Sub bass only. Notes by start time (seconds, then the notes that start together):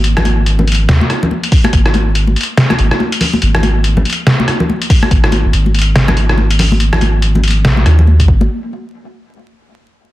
Already playing: G#1
0.89 D#2
1.73 G#1
2.79 G#1
3.42 G#1
5.11 G#1
5.45 G#1
5.53 G#1
7.65 A#1
7.86 D#2
8.28 G#1